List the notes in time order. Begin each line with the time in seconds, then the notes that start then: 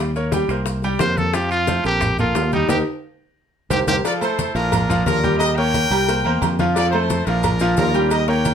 Already playing: D#2
0.15 A#3 A#4 C#5, high conga, maracas
0.32 G3 G4 G5, high bongo, high conga, high timbale, low timbale, maracas
0.49 C2 A#3 A#4 C5, high bongo, high conga, high timbale, maracas
0.66 high bongo, high conga, maracas
0.82 G3 G4 G5, high bongo, high conga, maracas
0.99 F2 A#3 A#4 C5, high bongo, low bongo, high conga, high timbale, low timbale, maracas
1.17 A4, high conga, maracas
1.34 F3 F4 G4 F5, high bongo, high conga, maracas
1.51 F4, high conga, high timbale, maracas
1.67 A3 A4 C5, high bongo, high conga, low timbale, maracas
1.84 A#1 C4 G4 A4 A#4, high bongo, high conga, high timbale, maracas
2.01 high bongo, high conga, low conga, high timbale, maracas
2.18 A#3 F4 A4 A#4, high bongo, high conga, low conga, maracas
2.35 D#2, high bongo, low bongo, high timbale, low timbale, maracas
2.52 G3 D#4 G4 G5, high bongo, high conga, maracas
2.69 D#2 D#4 G4 A#4, low bongo, high conga, high timbale, maracas
3.70 C2 G4 A#4 C5, low bongo, high conga, high timbale, maracas
3.87 C2 G4 A#4 C5, low bongo, high conga, high timbale, maracas
4.04 F3 F4 A4 D5 F5, cowbell, high conga, low agogo, maracas
4.21 A3 E4 A4 C5, high conga, low agogo, maracas
4.39 cowbell, high conga, maracas
4.55 A#1 F3 D4 F4 A#4 F5, cowbell, low agogo, maracas
4.72 cowbell, high conga, low conga, low agogo, maracas
4.89 F3 F4 F5, high conga, low conga, maracas
5.05 D#2 D4 F4 A#4, cowbell, high conga, low timbale, low agogo, maracas
5.23 G3 G4 G5, cowbell, high conga, maracas
5.38 G4 A#4 D#5, cowbell, high conga, low agogo, maracas
5.56 A#3 A#4 C#5 G5, cowbell, high conga
5.74 cowbell, high conga, low agogo, maracas
5.90 C2 G3 G4 G5, low agogo, maracas
6.08 A#3 A#4 C5, cowbell, high conga, maracas
6.25 E2 A#3 A#4 C5, high conga, low agogo
6.42 F2, cowbell, high conga, low timbale, low agogo, maracas
6.59 F3 F4 F5, cowbell, high conga, maracas
6.74 F3 F4 A4 D5 F5, cowbell, high conga, low agogo, maracas
6.91 A3 E4 A4 C5, high conga, low agogo
7.10 cowbell, high conga, maracas
7.26 A#1 F3 D4 F4 A#4 F5, cowbell, low agogo, maracas
7.43 cowbell, high conga, low conga, low agogo, maracas
7.59 F3 F4 F5, high conga, maracas
7.77 D#2 D4 F4 A#4, cowbell, high conga, low timbale, low agogo, maracas
7.94 G3 G4 G5, cowbell, maracas
8.11 G4 A#4 D#5, cowbell, high conga, low agogo, maracas
8.28 A#3 A#4 C#5 G5, cowbell, high conga
8.45 cowbell, high conga, low agogo, maracas